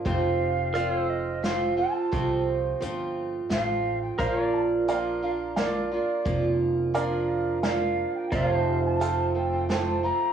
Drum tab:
HH |x-x-x-|x-x-x-|x-x-x-|x-x-x-|
SD |----o-|----o-|----o-|----o-|
BD |o-----|o-----|o-----|o-----|

HH |x-x-x-|
SD |----o-|
BD |o-----|